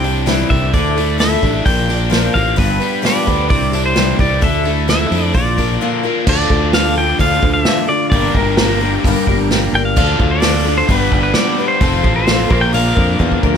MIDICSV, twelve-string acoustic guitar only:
0, 0, Header, 1, 2, 480
1, 0, Start_track
1, 0, Key_signature, -1, "minor"
1, 0, Tempo, 461538
1, 765, Time_signature, 4, 2, 24, 8
1, 14115, End_track
2, 0, Start_track
2, 0, Title_t, "Twelve-string acoustic guitar"
2, 0, Program_c, 0, 25
2, 39, Note_on_c, 0, 67, 51
2, 44, Note_on_c, 0, 64, 46
2, 59, Note_on_c, 0, 62, 39
2, 264, Note_off_c, 0, 62, 0
2, 266, Note_off_c, 0, 64, 0
2, 269, Note_on_c, 0, 48, 69
2, 270, Note_off_c, 0, 67, 0
2, 273, Note_on_c, 0, 55, 78
2, 276, Note_on_c, 0, 62, 81
2, 278, Note_on_c, 0, 64, 73
2, 282, Note_on_c, 0, 67, 84
2, 496, Note_off_c, 0, 67, 0
2, 509, Note_on_c, 0, 67, 54
2, 512, Note_off_c, 0, 64, 0
2, 517, Note_off_c, 0, 48, 0
2, 519, Note_off_c, 0, 55, 0
2, 521, Note_off_c, 0, 62, 0
2, 524, Note_on_c, 0, 64, 45
2, 536, Note_on_c, 0, 62, 42
2, 757, Note_off_c, 0, 67, 0
2, 758, Note_off_c, 0, 64, 0
2, 763, Note_off_c, 0, 62, 0
2, 765, Note_on_c, 0, 50, 70
2, 766, Note_on_c, 0, 57, 79
2, 770, Note_on_c, 0, 64, 78
2, 775, Note_on_c, 0, 62, 78
2, 779, Note_on_c, 0, 69, 78
2, 983, Note_off_c, 0, 69, 0
2, 996, Note_on_c, 0, 69, 50
2, 998, Note_off_c, 0, 64, 0
2, 1006, Note_off_c, 0, 50, 0
2, 1006, Note_off_c, 0, 57, 0
2, 1011, Note_off_c, 0, 62, 0
2, 1011, Note_on_c, 0, 64, 44
2, 1021, Note_on_c, 0, 62, 41
2, 1221, Note_off_c, 0, 62, 0
2, 1226, Note_on_c, 0, 50, 65
2, 1232, Note_off_c, 0, 64, 0
2, 1234, Note_off_c, 0, 69, 0
2, 1234, Note_on_c, 0, 62, 78
2, 1235, Note_on_c, 0, 57, 69
2, 1244, Note_on_c, 0, 64, 77
2, 1247, Note_on_c, 0, 69, 81
2, 1469, Note_off_c, 0, 69, 0
2, 1476, Note_off_c, 0, 50, 0
2, 1477, Note_off_c, 0, 64, 0
2, 1480, Note_off_c, 0, 57, 0
2, 1480, Note_off_c, 0, 62, 0
2, 1482, Note_on_c, 0, 69, 54
2, 1489, Note_on_c, 0, 64, 46
2, 1501, Note_on_c, 0, 62, 42
2, 1715, Note_off_c, 0, 62, 0
2, 1717, Note_on_c, 0, 53, 56
2, 1719, Note_on_c, 0, 58, 57
2, 1724, Note_off_c, 0, 69, 0
2, 1725, Note_off_c, 0, 64, 0
2, 1729, Note_on_c, 0, 62, 62
2, 1732, Note_on_c, 0, 70, 62
2, 1933, Note_off_c, 0, 70, 0
2, 1945, Note_off_c, 0, 62, 0
2, 1946, Note_on_c, 0, 70, 47
2, 1957, Note_off_c, 0, 53, 0
2, 1957, Note_on_c, 0, 62, 46
2, 1960, Note_off_c, 0, 58, 0
2, 1970, Note_on_c, 0, 53, 42
2, 1972, Note_on_c, 0, 58, 43
2, 2168, Note_off_c, 0, 53, 0
2, 2179, Note_off_c, 0, 58, 0
2, 2180, Note_on_c, 0, 53, 86
2, 2182, Note_off_c, 0, 62, 0
2, 2183, Note_off_c, 0, 70, 0
2, 2183, Note_on_c, 0, 50, 72
2, 2185, Note_on_c, 0, 46, 75
2, 2191, Note_on_c, 0, 58, 80
2, 2194, Note_on_c, 0, 62, 83
2, 2195, Note_on_c, 0, 70, 78
2, 2413, Note_off_c, 0, 70, 0
2, 2423, Note_off_c, 0, 62, 0
2, 2425, Note_on_c, 0, 70, 49
2, 2433, Note_off_c, 0, 53, 0
2, 2434, Note_off_c, 0, 58, 0
2, 2435, Note_off_c, 0, 50, 0
2, 2436, Note_off_c, 0, 46, 0
2, 2436, Note_on_c, 0, 62, 44
2, 2446, Note_on_c, 0, 58, 46
2, 2453, Note_on_c, 0, 53, 41
2, 2657, Note_off_c, 0, 53, 0
2, 2660, Note_off_c, 0, 58, 0
2, 2662, Note_off_c, 0, 62, 0
2, 2662, Note_on_c, 0, 43, 78
2, 2664, Note_on_c, 0, 50, 73
2, 2664, Note_on_c, 0, 59, 86
2, 2669, Note_on_c, 0, 53, 74
2, 2671, Note_off_c, 0, 70, 0
2, 2674, Note_on_c, 0, 62, 76
2, 2675, Note_on_c, 0, 71, 77
2, 2901, Note_off_c, 0, 71, 0
2, 2905, Note_off_c, 0, 62, 0
2, 2914, Note_on_c, 0, 71, 56
2, 2915, Note_off_c, 0, 43, 0
2, 2915, Note_off_c, 0, 50, 0
2, 2916, Note_off_c, 0, 59, 0
2, 2917, Note_on_c, 0, 62, 52
2, 2918, Note_off_c, 0, 53, 0
2, 2927, Note_on_c, 0, 59, 45
2, 2942, Note_on_c, 0, 53, 40
2, 3137, Note_off_c, 0, 53, 0
2, 3139, Note_off_c, 0, 59, 0
2, 3139, Note_off_c, 0, 71, 0
2, 3142, Note_on_c, 0, 43, 70
2, 3142, Note_on_c, 0, 50, 74
2, 3147, Note_off_c, 0, 62, 0
2, 3150, Note_on_c, 0, 53, 78
2, 3151, Note_on_c, 0, 71, 79
2, 3152, Note_on_c, 0, 59, 79
2, 3160, Note_on_c, 0, 62, 81
2, 3375, Note_off_c, 0, 71, 0
2, 3386, Note_off_c, 0, 62, 0
2, 3388, Note_on_c, 0, 71, 55
2, 3391, Note_off_c, 0, 59, 0
2, 3395, Note_off_c, 0, 43, 0
2, 3395, Note_off_c, 0, 50, 0
2, 3399, Note_off_c, 0, 53, 0
2, 3399, Note_on_c, 0, 62, 51
2, 3403, Note_on_c, 0, 59, 47
2, 3416, Note_on_c, 0, 53, 45
2, 3619, Note_off_c, 0, 62, 0
2, 3623, Note_off_c, 0, 53, 0
2, 3627, Note_off_c, 0, 59, 0
2, 3628, Note_on_c, 0, 55, 51
2, 3631, Note_on_c, 0, 62, 58
2, 3638, Note_off_c, 0, 71, 0
2, 3642, Note_on_c, 0, 64, 59
2, 3650, Note_on_c, 0, 67, 64
2, 3856, Note_off_c, 0, 67, 0
2, 3869, Note_on_c, 0, 67, 57
2, 3874, Note_off_c, 0, 64, 0
2, 3878, Note_off_c, 0, 55, 0
2, 3880, Note_off_c, 0, 62, 0
2, 3886, Note_on_c, 0, 64, 49
2, 3898, Note_on_c, 0, 62, 43
2, 4102, Note_on_c, 0, 48, 76
2, 4105, Note_off_c, 0, 64, 0
2, 4106, Note_off_c, 0, 67, 0
2, 4107, Note_off_c, 0, 62, 0
2, 4113, Note_on_c, 0, 55, 75
2, 4117, Note_on_c, 0, 64, 78
2, 4119, Note_on_c, 0, 62, 75
2, 4119, Note_on_c, 0, 67, 79
2, 4341, Note_off_c, 0, 67, 0
2, 4354, Note_on_c, 0, 67, 52
2, 4355, Note_off_c, 0, 48, 0
2, 4357, Note_off_c, 0, 64, 0
2, 4361, Note_off_c, 0, 55, 0
2, 4364, Note_off_c, 0, 62, 0
2, 4370, Note_on_c, 0, 64, 48
2, 4380, Note_on_c, 0, 62, 42
2, 4587, Note_off_c, 0, 62, 0
2, 4588, Note_on_c, 0, 50, 74
2, 4599, Note_off_c, 0, 64, 0
2, 4600, Note_on_c, 0, 62, 82
2, 4601, Note_off_c, 0, 67, 0
2, 4601, Note_on_c, 0, 57, 86
2, 4611, Note_on_c, 0, 64, 81
2, 4612, Note_on_c, 0, 69, 78
2, 4808, Note_off_c, 0, 69, 0
2, 4821, Note_on_c, 0, 69, 52
2, 4825, Note_off_c, 0, 64, 0
2, 4835, Note_off_c, 0, 62, 0
2, 4837, Note_on_c, 0, 64, 50
2, 4838, Note_off_c, 0, 50, 0
2, 4845, Note_off_c, 0, 57, 0
2, 4848, Note_on_c, 0, 62, 45
2, 5071, Note_on_c, 0, 50, 71
2, 5073, Note_off_c, 0, 62, 0
2, 5075, Note_off_c, 0, 69, 0
2, 5077, Note_on_c, 0, 57, 72
2, 5079, Note_off_c, 0, 64, 0
2, 5086, Note_on_c, 0, 62, 82
2, 5091, Note_on_c, 0, 64, 76
2, 5092, Note_on_c, 0, 69, 71
2, 5290, Note_off_c, 0, 69, 0
2, 5302, Note_on_c, 0, 69, 52
2, 5312, Note_off_c, 0, 64, 0
2, 5315, Note_off_c, 0, 62, 0
2, 5320, Note_off_c, 0, 50, 0
2, 5323, Note_off_c, 0, 57, 0
2, 5324, Note_on_c, 0, 64, 46
2, 5328, Note_on_c, 0, 62, 44
2, 5530, Note_on_c, 0, 53, 48
2, 5543, Note_off_c, 0, 62, 0
2, 5547, Note_on_c, 0, 58, 52
2, 5548, Note_off_c, 0, 64, 0
2, 5549, Note_off_c, 0, 69, 0
2, 5552, Note_on_c, 0, 65, 56
2, 5553, Note_on_c, 0, 70, 62
2, 5778, Note_off_c, 0, 70, 0
2, 5784, Note_off_c, 0, 65, 0
2, 5789, Note_off_c, 0, 53, 0
2, 5791, Note_on_c, 0, 70, 54
2, 5794, Note_off_c, 0, 58, 0
2, 5796, Note_on_c, 0, 65, 49
2, 5807, Note_on_c, 0, 58, 41
2, 5817, Note_on_c, 0, 53, 42
2, 6034, Note_off_c, 0, 53, 0
2, 6039, Note_on_c, 0, 46, 70
2, 6040, Note_off_c, 0, 65, 0
2, 6040, Note_off_c, 0, 70, 0
2, 6043, Note_off_c, 0, 58, 0
2, 6046, Note_on_c, 0, 50, 80
2, 6046, Note_on_c, 0, 53, 74
2, 6052, Note_on_c, 0, 65, 81
2, 6056, Note_on_c, 0, 58, 79
2, 6057, Note_on_c, 0, 70, 86
2, 6260, Note_off_c, 0, 70, 0
2, 6271, Note_off_c, 0, 65, 0
2, 6273, Note_on_c, 0, 70, 58
2, 6280, Note_off_c, 0, 58, 0
2, 6283, Note_on_c, 0, 65, 55
2, 6284, Note_off_c, 0, 46, 0
2, 6287, Note_off_c, 0, 50, 0
2, 6287, Note_off_c, 0, 53, 0
2, 6293, Note_on_c, 0, 58, 52
2, 6304, Note_on_c, 0, 53, 44
2, 6517, Note_off_c, 0, 53, 0
2, 6518, Note_off_c, 0, 65, 0
2, 6520, Note_off_c, 0, 70, 0
2, 6525, Note_on_c, 0, 50, 77
2, 6529, Note_on_c, 0, 53, 69
2, 6530, Note_off_c, 0, 58, 0
2, 6531, Note_on_c, 0, 65, 80
2, 6536, Note_on_c, 0, 69, 80
2, 6539, Note_on_c, 0, 62, 84
2, 6752, Note_off_c, 0, 69, 0
2, 6765, Note_on_c, 0, 69, 53
2, 6766, Note_off_c, 0, 50, 0
2, 6769, Note_off_c, 0, 53, 0
2, 6769, Note_off_c, 0, 65, 0
2, 6774, Note_off_c, 0, 62, 0
2, 6786, Note_on_c, 0, 65, 45
2, 6794, Note_on_c, 0, 62, 45
2, 7006, Note_off_c, 0, 62, 0
2, 7006, Note_off_c, 0, 69, 0
2, 7006, Note_on_c, 0, 53, 59
2, 7014, Note_off_c, 0, 65, 0
2, 7018, Note_on_c, 0, 62, 59
2, 7027, Note_on_c, 0, 65, 57
2, 7032, Note_on_c, 0, 69, 63
2, 7221, Note_off_c, 0, 69, 0
2, 7234, Note_on_c, 0, 69, 52
2, 7239, Note_off_c, 0, 65, 0
2, 7247, Note_off_c, 0, 53, 0
2, 7251, Note_on_c, 0, 65, 50
2, 7253, Note_off_c, 0, 62, 0
2, 7265, Note_on_c, 0, 62, 43
2, 7476, Note_off_c, 0, 62, 0
2, 7477, Note_off_c, 0, 69, 0
2, 7479, Note_on_c, 0, 50, 68
2, 7481, Note_off_c, 0, 65, 0
2, 7489, Note_on_c, 0, 53, 71
2, 7489, Note_on_c, 0, 62, 71
2, 7489, Note_on_c, 0, 69, 81
2, 7493, Note_on_c, 0, 65, 83
2, 7712, Note_off_c, 0, 69, 0
2, 7719, Note_off_c, 0, 65, 0
2, 7723, Note_off_c, 0, 50, 0
2, 7724, Note_on_c, 0, 69, 53
2, 7728, Note_off_c, 0, 53, 0
2, 7728, Note_off_c, 0, 62, 0
2, 7731, Note_on_c, 0, 65, 51
2, 7752, Note_on_c, 0, 62, 44
2, 7958, Note_on_c, 0, 53, 60
2, 7959, Note_off_c, 0, 62, 0
2, 7961, Note_off_c, 0, 65, 0
2, 7965, Note_off_c, 0, 69, 0
2, 7972, Note_on_c, 0, 62, 62
2, 7974, Note_on_c, 0, 65, 64
2, 7983, Note_on_c, 0, 69, 66
2, 8185, Note_off_c, 0, 69, 0
2, 8198, Note_on_c, 0, 69, 52
2, 8199, Note_off_c, 0, 65, 0
2, 8203, Note_off_c, 0, 53, 0
2, 8209, Note_off_c, 0, 62, 0
2, 8211, Note_on_c, 0, 65, 47
2, 8221, Note_on_c, 0, 62, 47
2, 8442, Note_off_c, 0, 69, 0
2, 8446, Note_on_c, 0, 43, 81
2, 8449, Note_off_c, 0, 65, 0
2, 8451, Note_off_c, 0, 62, 0
2, 8453, Note_on_c, 0, 50, 77
2, 8455, Note_on_c, 0, 58, 82
2, 8458, Note_on_c, 0, 55, 69
2, 8464, Note_on_c, 0, 62, 82
2, 8464, Note_on_c, 0, 70, 74
2, 8674, Note_off_c, 0, 70, 0
2, 8684, Note_off_c, 0, 62, 0
2, 8686, Note_off_c, 0, 43, 0
2, 8686, Note_on_c, 0, 70, 48
2, 8690, Note_off_c, 0, 50, 0
2, 8691, Note_off_c, 0, 58, 0
2, 8692, Note_off_c, 0, 55, 0
2, 8696, Note_on_c, 0, 62, 51
2, 8704, Note_on_c, 0, 58, 42
2, 8708, Note_on_c, 0, 55, 43
2, 8924, Note_off_c, 0, 55, 0
2, 8926, Note_off_c, 0, 70, 0
2, 8931, Note_off_c, 0, 62, 0
2, 8935, Note_off_c, 0, 58, 0
2, 8936, Note_on_c, 0, 55, 53
2, 8950, Note_on_c, 0, 58, 63
2, 8956, Note_on_c, 0, 62, 64
2, 8970, Note_on_c, 0, 70, 65
2, 9152, Note_off_c, 0, 70, 0
2, 9165, Note_off_c, 0, 62, 0
2, 9165, Note_on_c, 0, 70, 57
2, 9169, Note_off_c, 0, 58, 0
2, 9171, Note_off_c, 0, 55, 0
2, 9177, Note_on_c, 0, 62, 52
2, 9182, Note_on_c, 0, 58, 49
2, 9193, Note_on_c, 0, 55, 44
2, 9405, Note_off_c, 0, 70, 0
2, 9411, Note_off_c, 0, 62, 0
2, 9414, Note_off_c, 0, 58, 0
2, 9419, Note_off_c, 0, 55, 0
2, 9431, Note_on_c, 0, 43, 77
2, 9433, Note_on_c, 0, 50, 74
2, 9438, Note_on_c, 0, 55, 89
2, 9438, Note_on_c, 0, 58, 86
2, 9438, Note_on_c, 0, 62, 82
2, 9447, Note_on_c, 0, 70, 89
2, 9632, Note_off_c, 0, 70, 0
2, 9644, Note_on_c, 0, 70, 62
2, 9646, Note_off_c, 0, 62, 0
2, 9653, Note_off_c, 0, 58, 0
2, 9656, Note_off_c, 0, 55, 0
2, 9658, Note_off_c, 0, 43, 0
2, 9659, Note_off_c, 0, 50, 0
2, 9659, Note_on_c, 0, 62, 58
2, 9665, Note_on_c, 0, 58, 52
2, 9669, Note_on_c, 0, 55, 51
2, 9874, Note_off_c, 0, 55, 0
2, 9885, Note_off_c, 0, 70, 0
2, 9886, Note_off_c, 0, 58, 0
2, 9887, Note_on_c, 0, 55, 73
2, 9892, Note_off_c, 0, 62, 0
2, 9898, Note_on_c, 0, 58, 78
2, 9912, Note_on_c, 0, 62, 73
2, 9912, Note_on_c, 0, 70, 73
2, 10125, Note_off_c, 0, 70, 0
2, 10126, Note_off_c, 0, 55, 0
2, 10131, Note_off_c, 0, 62, 0
2, 10132, Note_off_c, 0, 58, 0
2, 10138, Note_on_c, 0, 70, 49
2, 10143, Note_on_c, 0, 62, 55
2, 10149, Note_on_c, 0, 58, 46
2, 10156, Note_on_c, 0, 55, 42
2, 10355, Note_off_c, 0, 62, 0
2, 10359, Note_off_c, 0, 55, 0
2, 10359, Note_on_c, 0, 50, 77
2, 10363, Note_on_c, 0, 53, 75
2, 10364, Note_off_c, 0, 58, 0
2, 10368, Note_on_c, 0, 62, 81
2, 10370, Note_on_c, 0, 65, 80
2, 10372, Note_off_c, 0, 70, 0
2, 10380, Note_on_c, 0, 69, 88
2, 10593, Note_off_c, 0, 69, 0
2, 10602, Note_off_c, 0, 50, 0
2, 10604, Note_off_c, 0, 53, 0
2, 10605, Note_on_c, 0, 69, 48
2, 10606, Note_off_c, 0, 62, 0
2, 10608, Note_off_c, 0, 65, 0
2, 10619, Note_on_c, 0, 65, 47
2, 10626, Note_on_c, 0, 62, 44
2, 10818, Note_on_c, 0, 53, 56
2, 10820, Note_off_c, 0, 62, 0
2, 10825, Note_off_c, 0, 65, 0
2, 10833, Note_on_c, 0, 62, 69
2, 10836, Note_off_c, 0, 69, 0
2, 10838, Note_on_c, 0, 65, 66
2, 10849, Note_on_c, 0, 69, 67
2, 11064, Note_off_c, 0, 69, 0
2, 11072, Note_off_c, 0, 53, 0
2, 11077, Note_on_c, 0, 69, 56
2, 11079, Note_off_c, 0, 62, 0
2, 11081, Note_off_c, 0, 65, 0
2, 11100, Note_on_c, 0, 65, 55
2, 11103, Note_on_c, 0, 62, 46
2, 11321, Note_off_c, 0, 69, 0
2, 11324, Note_on_c, 0, 43, 77
2, 11331, Note_off_c, 0, 62, 0
2, 11331, Note_on_c, 0, 50, 77
2, 11332, Note_off_c, 0, 65, 0
2, 11335, Note_on_c, 0, 55, 76
2, 11340, Note_on_c, 0, 71, 85
2, 11341, Note_on_c, 0, 59, 79
2, 11343, Note_on_c, 0, 62, 87
2, 11557, Note_off_c, 0, 71, 0
2, 11564, Note_off_c, 0, 43, 0
2, 11568, Note_off_c, 0, 50, 0
2, 11569, Note_on_c, 0, 71, 53
2, 11570, Note_off_c, 0, 55, 0
2, 11573, Note_off_c, 0, 59, 0
2, 11574, Note_off_c, 0, 62, 0
2, 11586, Note_on_c, 0, 62, 51
2, 11590, Note_on_c, 0, 59, 51
2, 11596, Note_on_c, 0, 55, 46
2, 11795, Note_off_c, 0, 55, 0
2, 11807, Note_off_c, 0, 71, 0
2, 11808, Note_on_c, 0, 55, 57
2, 11811, Note_off_c, 0, 59, 0
2, 11815, Note_off_c, 0, 62, 0
2, 11824, Note_on_c, 0, 59, 64
2, 11832, Note_on_c, 0, 62, 67
2, 11832, Note_on_c, 0, 71, 69
2, 12039, Note_off_c, 0, 71, 0
2, 12046, Note_off_c, 0, 55, 0
2, 12047, Note_off_c, 0, 62, 0
2, 12052, Note_on_c, 0, 71, 49
2, 12054, Note_off_c, 0, 59, 0
2, 12059, Note_on_c, 0, 62, 47
2, 12068, Note_on_c, 0, 59, 45
2, 12072, Note_on_c, 0, 55, 41
2, 12284, Note_off_c, 0, 55, 0
2, 12288, Note_off_c, 0, 59, 0
2, 12288, Note_off_c, 0, 71, 0
2, 12289, Note_on_c, 0, 53, 71
2, 12292, Note_off_c, 0, 62, 0
2, 12292, Note_on_c, 0, 60, 84
2, 12300, Note_on_c, 0, 65, 78
2, 12307, Note_on_c, 0, 69, 79
2, 12501, Note_off_c, 0, 69, 0
2, 12514, Note_on_c, 0, 69, 54
2, 12518, Note_off_c, 0, 65, 0
2, 12527, Note_off_c, 0, 53, 0
2, 12528, Note_off_c, 0, 60, 0
2, 12531, Note_on_c, 0, 65, 47
2, 12541, Note_on_c, 0, 60, 44
2, 12755, Note_off_c, 0, 60, 0
2, 12756, Note_on_c, 0, 53, 53
2, 12759, Note_off_c, 0, 69, 0
2, 12767, Note_on_c, 0, 60, 61
2, 12768, Note_off_c, 0, 65, 0
2, 12781, Note_on_c, 0, 65, 60
2, 12785, Note_on_c, 0, 69, 61
2, 12990, Note_off_c, 0, 69, 0
2, 12991, Note_off_c, 0, 65, 0
2, 12995, Note_on_c, 0, 70, 60
2, 12996, Note_on_c, 0, 62, 48
2, 12999, Note_off_c, 0, 60, 0
2, 13000, Note_off_c, 0, 53, 0
2, 13003, Note_on_c, 0, 58, 43
2, 13019, Note_on_c, 0, 53, 47
2, 13235, Note_on_c, 0, 46, 68
2, 13237, Note_off_c, 0, 58, 0
2, 13239, Note_off_c, 0, 53, 0
2, 13240, Note_off_c, 0, 62, 0
2, 13240, Note_off_c, 0, 70, 0
2, 13241, Note_on_c, 0, 50, 70
2, 13250, Note_on_c, 0, 58, 78
2, 13251, Note_on_c, 0, 53, 74
2, 13254, Note_on_c, 0, 62, 77
2, 13259, Note_on_c, 0, 70, 91
2, 13457, Note_off_c, 0, 70, 0
2, 13469, Note_on_c, 0, 70, 56
2, 13470, Note_off_c, 0, 58, 0
2, 13474, Note_off_c, 0, 62, 0
2, 13479, Note_off_c, 0, 53, 0
2, 13480, Note_off_c, 0, 46, 0
2, 13482, Note_on_c, 0, 58, 48
2, 13483, Note_off_c, 0, 50, 0
2, 13487, Note_on_c, 0, 62, 54
2, 13492, Note_on_c, 0, 53, 39
2, 13706, Note_off_c, 0, 53, 0
2, 13713, Note_off_c, 0, 58, 0
2, 13717, Note_off_c, 0, 70, 0
2, 13718, Note_on_c, 0, 53, 62
2, 13720, Note_off_c, 0, 62, 0
2, 13725, Note_on_c, 0, 58, 60
2, 13732, Note_on_c, 0, 62, 63
2, 13739, Note_on_c, 0, 70, 69
2, 13959, Note_off_c, 0, 70, 0
2, 13962, Note_off_c, 0, 53, 0
2, 13963, Note_off_c, 0, 62, 0
2, 13965, Note_off_c, 0, 58, 0
2, 13972, Note_on_c, 0, 70, 60
2, 13975, Note_on_c, 0, 62, 55
2, 13983, Note_on_c, 0, 58, 51
2, 13986, Note_on_c, 0, 53, 48
2, 14115, Note_off_c, 0, 53, 0
2, 14115, Note_off_c, 0, 58, 0
2, 14115, Note_off_c, 0, 62, 0
2, 14115, Note_off_c, 0, 70, 0
2, 14115, End_track
0, 0, End_of_file